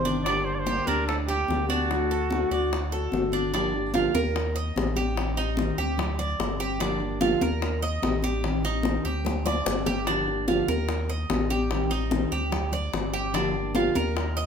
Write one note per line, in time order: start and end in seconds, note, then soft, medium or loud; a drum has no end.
0.00 0.81 G1 loud
0.00 0.25 C3 medium
0.00 0.26 D#3 medium
0.00 0.26 G3 medium
0.00 0.26 D4 medium
0.00 0.27 G4 medium
0.05 0.25 D4 medium
0.05 high bongo soft
0.05 high conga medium
0.24 0.66 D3 medium
0.24 0.67 G3 medium
0.24 0.66 D4 medium
0.24 0.46 D5 medium
0.24 high bongo medium
0.28 0.67 A#3 medium
0.28 0.67 D4 medium
0.28 0.67 G4 medium
0.45 0.56 C5 medium
0.45 high conga soft
0.55 0.61 D5 medium
0.59 0.89 C5 medium
0.66 0.87 D3 medium
0.66 0.88 G3 medium
0.66 0.88 A#3 medium
0.66 0.88 D4 medium
0.66 0.87 G4 medium
0.66 high bongo medium
0.66 high conga medium
0.71 0.87 G4 medium
0.87 1.45 D2 loud
0.87 1.08 A#3 soft
0.87 1.27 D4 medium
0.87 1.08 D4 soft
0.87 1.07 G4 soft
0.87 1.07 A#4 medium
0.87 high bongo soft
0.87 high conga medium
1.07 1.16 A4 medium
1.07 muted nylon-string guitar stroke medium
1.07 high bongo medium
1.07 high conga soft
1.28 1.49 A#3 soft
1.28 1.49 D4 soft
1.28 1.66 G4 medium
1.28 1.48 G4 medium
1.28 1.68 G4 medium
1.28 high bongo soft
1.28 high conga soft
1.48 2.45 D2 medium
1.48 1.89 D3 medium
1.48 1.89 G3 medium
1.48 1.90 A#3 medium
1.48 1.90 D4 medium
1.48 1.90 G4 medium
1.48 high bongo soft
1.48 low bongo medium
1.48 high conga medium
1.68 2.09 D4 medium
1.68 3.28 F#4 medium
1.68 high bongo soft
1.68 high conga medium
1.90 2.30 D3 medium
1.90 2.31 A3 medium
1.90 2.31 D4 medium
1.90 2.31 F#4 medium
1.90 high bongo medium
1.90 high conga soft
2.10 2.50 A4 medium
2.10 high conga soft
2.31 2.51 D3 medium
2.31 2.51 A3 medium
2.31 2.51 D4 medium
2.31 2.51 F#4 medium
2.31 high bongo medium
2.31 high conga medium
2.51 3.08 D2 loud
2.51 2.72 A3 soft
2.51 2.72 D4 soft
2.51 2.71 F#4 medium
2.51 2.91 D5 medium
2.51 high bongo soft
2.51 high conga soft
2.72 muted nylon-string guitar stroke medium
2.72 high bongo medium
2.72 high conga soft
2.92 3.12 A3 soft
2.92 3.13 D4 soft
2.92 3.12 F#4 soft
2.92 3.32 A4 medium
2.92 high bongo soft
2.92 high conga soft
3.12 4.08 G1 medium
3.12 3.52 D3 medium
3.12 3.53 A3 medium
3.12 3.53 D4 medium
3.12 3.53 F#4 medium
3.12 high bongo soft
3.12 low bongo medium
3.12 high conga medium
3.32 3.52 D4 medium
3.32 high bongo soft
3.32 high conga medium
3.53 3.73 D3 medium
3.53 3.73 F3 medium
3.53 3.73 A#3 medium
3.53 3.93 D4 medium
3.53 3.73 D4 medium
3.53 3.72 G4 medium
3.53 high bongo medium
3.53 high conga soft
3.73 3.94 A#3 soft
3.73 3.94 D4 soft
3.73 3.93 G4 soft
3.73 high conga soft
3.94 4.14 D3 medium
3.94 4.14 F3 medium
3.94 4.14 A#3 medium
3.94 4.15 D4 medium
3.94 4.14 F4 medium
3.94 4.13 G4 medium
3.94 high bongo medium
3.94 high conga loud
4.14 4.72 D#2 medium
4.14 4.35 A#3 soft
4.14 4.35 D4 medium
4.14 4.34 G4 medium
4.14 4.54 A#4 medium
4.14 high conga loud
4.35 muted nylon-string guitar stroke medium
4.35 high bongo medium
4.35 high conga soft
4.55 4.95 D#5 medium
4.55 high conga soft
4.76 5.72 A1 loud
4.76 4.96 D#3 medium
4.76 4.96 G3 medium
4.76 4.96 D4 medium
4.76 4.94 G4 medium
4.76 high bongo medium
4.76 low bongo medium
4.76 high conga medium
4.95 5.15 G3 soft
4.95 5.16 D4 soft
4.95 5.15 G4 medium
4.95 5.36 G4 medium
4.95 high conga medium
5.15 5.36 D#3 medium
5.15 5.36 G3 medium
5.15 5.35 C4 medium
5.15 high bongo medium
5.36 5.57 G3 soft
5.36 5.56 C4 soft
5.36 5.77 D#4 medium
5.36 high bongo soft
5.36 high conga soft
5.57 5.77 D#3 medium
5.57 5.78 G3 medium
5.57 5.78 C4 medium
5.57 high bongo medium
5.57 high conga loud
5.78 6.35 D2 loud
5.78 5.98 C4 medium
5.78 6.18 G4 medium
5.78 high bongo soft
5.98 muted nylon-string guitar stroke medium
5.98 high bongo medium
5.98 high conga soft
5.98 low conga medium
6.19 6.58 D5 medium
6.19 high conga soft
6.19 low conga medium
6.39 7.35 G1 medium
6.39 6.58 D3 medium
6.39 6.59 G3 medium
6.39 6.58 C4 medium
6.39 high bongo medium
6.39 low bongo medium
6.39 high conga soft
6.59 6.79 G3 soft
6.59 6.79 C4 medium
6.59 6.80 G4 medium
6.59 high bongo soft
6.79 6.99 D3 medium
6.79 6.99 F3 medium
6.79 7.00 A#3 medium
6.79 7.20 D4 medium
6.79 7.00 D4 medium
6.79 6.99 G4 medium
6.79 high bongo medium
6.79 high conga soft
7.00 7.20 A#3 soft
7.00 7.21 D4 soft
7.00 7.20 G4 medium
7.00 high conga soft
7.20 7.40 D3 medium
7.20 7.40 F3 medium
7.20 7.40 A#3 medium
7.20 7.41 D4 medium
7.20 7.41 F4 medium
7.20 7.40 G4 medium
7.20 high bongo medium
7.20 high conga loud
7.41 7.99 D#2 loud
7.41 7.62 A#3 soft
7.41 7.62 D4 soft
7.41 7.61 G4 medium
7.41 7.81 A#4 medium
7.41 high conga loud
7.61 muted nylon-string guitar stroke medium
7.61 high bongo medium
7.61 high conga soft
7.82 8.22 D#5 medium
7.82 high conga soft
8.02 8.99 A1 medium
8.02 8.22 D#3 medium
8.02 8.23 G3 medium
8.02 8.23 D4 medium
8.02 8.22 G4 medium
8.02 high bongo medium
8.02 low bongo medium
8.02 high conga medium
8.22 8.44 G3 soft
8.22 8.44 D4 soft
8.22 8.43 G4 soft
8.22 8.63 G4 medium
8.22 high conga medium
8.43 8.63 D#3 medium
8.43 8.64 G3 medium
8.43 8.63 C4 medium
8.43 high bongo medium
8.43 high conga soft
8.63 8.85 G3 soft
8.63 8.84 C4 soft
8.63 9.04 D#4 medium
8.63 high bongo soft
8.63 high conga soft
8.83 9.04 D#3 medium
8.83 9.05 G3 medium
8.83 9.05 C4 medium
8.83 high bongo medium
8.83 high conga loud
9.05 9.62 D2 loud
9.05 9.25 G3 soft
9.05 9.25 C4 soft
9.05 9.44 G4 medium
9.05 high bongo soft
9.25 muted nylon-string guitar stroke medium
9.25 high bongo medium
9.25 high conga soft
9.25 low conga medium
9.45 9.85 D5 medium
9.45 high bongo medium
9.45 high conga soft
9.45 low conga medium
9.66 10.62 G1 loud
9.66 9.86 D3 medium
9.66 9.87 G3 medium
9.66 9.87 C4 medium
9.66 low bongo loud
9.66 high conga soft
9.86 10.07 C4 medium
9.86 10.06 G4 medium
9.86 low bongo medium
9.86 high conga medium
9.91 10.08 G3 soft
10.07 10.27 D3 medium
10.07 10.27 F3 medium
10.07 10.28 A#3 medium
10.07 10.47 D4 medium
10.07 10.28 D4 medium
10.07 10.27 G4 medium
10.07 high bongo medium
10.07 high conga soft
10.28 10.49 A#3 soft
10.28 10.48 D4 soft
10.28 10.47 G4 soft
10.28 high conga soft
10.48 10.68 D3 medium
10.48 10.68 F3 medium
10.48 10.68 A#3 medium
10.48 10.68 D4 medium
10.48 10.68 F4 medium
10.48 10.67 G4 medium
10.48 high bongo medium
10.48 high conga loud
10.68 11.25 D#2 loud
10.68 10.89 A#3 soft
10.68 10.88 D4 soft
10.68 10.88 G4 medium
10.68 11.08 A#4 medium
10.68 high conga loud
10.89 muted nylon-string guitar stroke medium
10.89 high bongo medium
10.89 high conga soft
11.10 11.49 D#5 medium
11.10 high conga soft
11.29 12.26 A1 loud
11.29 11.49 D#3 medium
11.29 11.50 G3 medium
11.29 11.50 D4 medium
11.29 11.49 G4 medium
11.29 high bongo medium
11.29 low bongo medium
11.29 high conga medium
11.50 11.71 G3 soft
11.50 11.71 D4 soft
11.50 11.90 G4 medium
11.50 11.70 G4 medium
11.50 high conga medium
11.71 11.90 D#3 medium
11.71 11.91 G3 medium
11.71 11.90 C4 medium
11.71 high bongo medium
11.91 12.11 C4 medium
11.91 12.30 D#4 medium
11.91 high bongo soft
11.91 high conga soft
12.11 12.31 D#3 medium
12.11 12.32 G3 medium
12.11 12.31 C4 medium
12.11 high bongo medium
12.11 high conga loud
12.32 12.89 D2 medium
12.32 12.52 G3 soft
12.32 12.51 C4 medium
12.32 12.71 G4 medium
12.32 high bongo soft
12.52 muted nylon-string guitar stroke medium
12.52 high bongo medium
12.52 high conga soft
12.52 low conga medium
12.72 13.12 D5 medium
12.72 high conga soft
12.72 low conga medium
12.93 13.89 G1 loud
12.93 13.13 D3 medium
12.93 13.13 G3 medium
12.93 13.12 C4 medium
12.93 high bongo medium
12.93 low bongo medium
12.93 high conga soft
13.13 13.34 G3 soft
13.13 13.33 C4 medium
13.13 13.33 G4 medium
13.13 high bongo soft
13.33 13.53 D3 medium
13.33 13.54 F3 medium
13.33 13.54 A#3 medium
13.33 13.74 D4 medium
13.33 13.54 D4 medium
13.33 13.53 G4 medium
13.33 high bongo medium
13.33 high conga soft
13.54 13.75 A#3 soft
13.54 13.75 D4 soft
13.54 13.74 G4 medium
13.54 high conga soft
13.75 13.95 D3 medium
13.75 13.95 F3 medium
13.75 13.95 A#3 medium
13.75 13.95 D4 medium
13.75 13.95 F4 medium
13.75 13.94 G4 medium
13.75 high bongo medium
13.75 high conga loud
13.95 14.46 D#2 loud
13.95 14.16 A#3 soft
13.95 14.15 D4 soft
13.95 14.15 G4 medium
13.95 14.35 A#4 medium
13.95 high conga loud
14.16 muted nylon-string guitar stroke medium
14.16 high bongo medium
14.16 high conga soft
14.36 14.46 D#5 medium
14.36 high conga soft